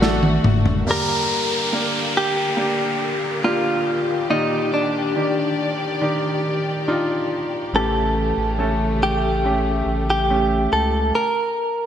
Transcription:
0.00 0.40 A1 medium
0.00 0.40 A2 medium
0.00 0.83 D3 medium
0.00 0.85 A3 medium
0.00 0.88 A3 medium
0.00 0.02 D4 medium
0.00 0.83 D4 medium
0.00 0.41 F#4 medium
0.00 0.85 F#4 medium
0.00 0.89 F#4 medium
0.00 0.83 A4 medium
0.00 snare medium
0.23 high tom medium
0.44 0.84 F#1 medium
0.44 mid tom medium
0.66 floor tom medium
0.86 2.11 G2 soft
0.86 4.26 D3 medium
0.86 2.11 D3 soft
0.86 1.68 A#3 medium
0.86 4.26 A#3 medium
0.86 1.68 D4 medium
0.86 1.68 G4 medium
0.86 11.11 G4 medium
0.86 downlifter medium
0.91 2.13 A#4 medium
1.73 2.54 A#3 medium
1.73 2.54 D4 soft
1.73 2.54 A#4 medium
2.17 3.49 G4 medium
2.57 3.39 A#3 medium
2.57 3.39 D4 soft
2.57 3.39 G4 medium
3.44 4.25 A#3 medium
3.44 4.25 D4 medium
3.44 4.30 F4 medium
3.44 4.26 G4 medium
4.30 5.54 A#2 soft
4.30 5.11 D#3 medium
4.30 7.69 D#3 medium
4.30 4.73 D#4 medium
4.30 5.11 G4 medium
4.30 5.11 D5 medium
4.30 7.69 D5 medium
4.74 6.40 D4 medium
5.16 5.97 D#3 medium
5.16 5.97 D4 medium
5.16 5.97 G4 medium
6.01 6.83 D#3 medium
6.01 6.83 D4 medium
6.01 6.83 G4 medium
6.88 7.69 D4 medium
6.88 7.69 D#4 medium
6.88 7.69 F4 medium
7.72 8.33 A1 loud
7.72 8.98 A2 soft
7.72 11.12 C#3 medium
7.72 8.98 E3 soft
7.72 11.12 A3 medium
7.72 8.54 A3 medium
7.72 8.55 C#4 medium
7.72 8.55 G4 medium
7.72 9.03 A4 medium
8.37 9.83 A1 medium
8.59 9.40 A3 medium
8.59 9.40 C#4 medium
8.59 9.40 A4 medium
9.03 10.09 G4 medium
9.45 10.26 A3 medium
9.45 10.26 C#4 medium
9.45 10.26 G4 medium
9.86 10.68 A1 medium
10.10 10.72 G4 medium
10.30 11.11 A3 medium
10.30 11.11 C#4 medium
10.30 11.12 G4 medium
10.73 11.12 C#2 medium
10.73 11.15 A4 medium
11.15 11.86 A#4 medium

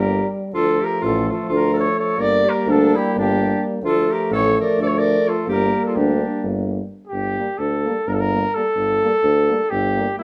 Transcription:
0.00 0.23 G1 loud
0.00 0.55 G3 medium
0.00 0.35 A#3 medium
0.00 0.27 G4 medium
0.00 0.28 A#4 medium
0.53 0.80 D2 medium
0.53 2.19 F3 medium
0.53 2.19 A3 medium
0.53 0.82 F4 loud
0.53 0.85 A4 loud
0.81 1.00 G4 medium
0.81 1.04 A#4 medium
1.01 1.28 A1 loud
1.01 1.25 F4 medium
1.01 1.27 A4 medium
1.29 1.48 F4 medium
1.29 1.50 A4 medium
1.49 1.87 D2 loud
1.49 1.72 F4 medium
1.55 1.75 A#4 medium
1.74 1.94 A4 medium
1.79 1.97 C#5 medium
1.98 2.20 A4 medium
1.98 2.22 C#5 loud
2.17 2.44 G1 medium
2.17 3.84 G3 medium
2.17 3.82 A#3 medium
2.17 2.46 A#4 medium
2.17 2.51 D5 loud
2.45 2.70 G4 medium
2.49 2.72 A#4 medium
2.67 2.93 D2 loud
2.67 2.97 D4 medium
2.71 2.98 A4 medium
2.95 3.16 E4 medium
2.95 3.17 G4 medium
3.15 3.52 G1 loud
3.15 3.64 D4 medium
3.15 3.64 G4 medium
3.82 4.09 D2 medium
3.82 5.51 F3 medium
3.82 5.47 A3 medium
3.82 4.12 F4 medium
3.82 4.14 A4 loud
4.11 4.32 G4 medium
4.11 4.33 A#4 medium
4.30 4.57 A1 loud
4.30 4.56 A4 medium
4.34 4.57 C#5 loud
4.60 4.79 A#4 medium
4.60 4.80 D5 medium
4.78 5.16 D2 loud
4.78 4.88 A4 medium
4.83 4.88 D5 loud
4.87 4.98 A4 medium
4.87 4.99 C#5 medium
4.97 5.29 A#4 medium
4.97 5.30 D5 loud
5.28 5.48 F4 medium
5.28 5.48 A4 medium
5.46 5.73 G1 medium
5.46 6.95 G3 medium
5.46 6.93 A#3 medium
5.46 5.82 G4 medium
5.51 5.83 A#4 medium
5.85 5.99 F4 medium
5.85 5.97 A4 medium
5.95 6.22 D2 loud
5.95 6.51 D4 medium
5.95 6.49 G4 medium
6.42 6.80 G1 medium
7.07 7.59 G4 medium
7.12 7.38 G1 medium
7.38 7.47 G3 medium
7.38 7.47 A#3 medium
7.58 7.85 D2 medium
7.58 8.09 A4 medium
7.85 7.96 G3 medium
7.85 7.94 A#3 medium
8.07 8.44 G1 loud
8.07 8.15 A#4 medium
8.14 8.21 A4 medium
8.20 8.56 A#4 loud
8.32 8.43 G3 medium
8.32 8.40 A#3 medium
8.54 8.63 G3 medium
8.54 8.62 A#3 medium
8.54 9.71 A4 loud
8.75 9.02 G1 medium
9.01 9.12 G3 medium
9.01 9.10 A#3 medium
9.23 9.50 D2 loud
9.48 9.59 G3 medium
9.48 9.57 A#3 medium
9.70 10.08 G1 loud
9.70 10.16 G4 loud
9.96 10.06 G3 medium
9.96 10.05 A#3 medium
10.18 10.23 G3 medium
10.18 10.23 A#3 medium
10.18 10.23 E4 medium

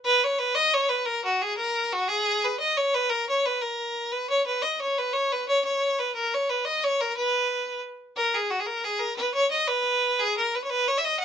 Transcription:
0.05 0.20 B4 medium
0.20 0.25 B4 medium
0.24 0.40 C#5 medium
0.39 0.56 B4 medium
0.55 0.75 D#5 medium
0.74 0.91 C#5 medium
0.89 1.07 B4 medium
1.05 1.24 A#4 medium
1.25 1.43 F#4 medium
1.42 1.56 G#4 medium
1.57 1.94 A#4 medium
1.93 2.10 F#4 medium
2.08 2.46 G#4 medium
2.44 2.59 B4 medium
2.60 2.78 D#5 medium
2.77 2.95 C#5 medium
2.94 3.11 B4 medium
3.09 3.28 A#4 medium
3.29 3.47 C#5 medium
3.46 3.63 B4 medium
3.62 4.14 A#4 medium
4.12 4.29 B4 medium
4.30 4.45 C#5 medium
4.46 4.64 B4 medium
4.62 4.80 D#5 medium
4.81 5.00 C#5 medium
4.98 5.15 B4 medium
5.13 5.34 C#5 medium
5.32 5.47 B4 medium
5.49 5.63 C#5 medium
5.65 6.01 C#5 medium
5.99 6.14 B4 medium
6.15 6.35 A#4 medium
6.34 6.51 C#5 medium
6.49 6.67 B4 medium
6.65 6.85 D#5 medium
6.84 7.02 C#5 medium
7.01 7.15 A#4 medium
7.17 7.80 B4 medium
8.16 8.36 A#4 medium
8.34 8.52 G#4 medium
8.50 8.61 F#4 medium
8.60 8.67 G#4 medium
8.66 8.86 A#4 medium
8.84 9.01 G#4 medium
8.99 9.16 A#4 medium
9.17 9.33 B4 medium
9.34 9.49 C#5 medium
9.51 9.69 D#5 medium
9.67 10.21 B4 medium
10.19 10.37 G#4 medium
10.37 10.56 A#4 medium
10.55 10.64 B4 medium
10.64 10.71 C#5 medium
10.69 10.89 B4 medium
10.88 11.00 C#5 medium
10.98 11.06 E5 medium
11.05 11.19 D#5 medium
11.19 11.25 F#5 loud

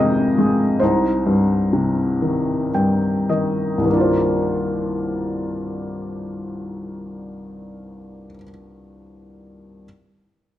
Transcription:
0.00 0.78 F2 soft
0.00 0.83 C3 soft
0.00 0.78 D#3 soft
0.00 0.37 G#3 soft
0.00 0.84 G#4 soft
0.00 0.83 D#5 medium
0.00 0.83 F5 medium
0.00 0.83 G5 medium
0.38 0.80 G#3 soft
0.80 3.76 C2 soft
0.80 2.70 D#4 soft
0.80 2.69 C5 soft
1.26 2.73 G2 soft
1.73 3.85 C3 soft
2.22 3.28 D#3 soft
2.74 3.80 G2 soft
2.74 3.26 G5 soft
3.29 3.83 D#3 soft
3.29 3.85 D#5 soft
3.78 8.26 C2 soft
3.78 8.30 G2 soft
3.85 8.33 D#3 soft
3.89 8.37 A#3 soft
3.89 8.41 D4 soft
3.96 8.44 F4 soft
3.96 8.48 C5 soft

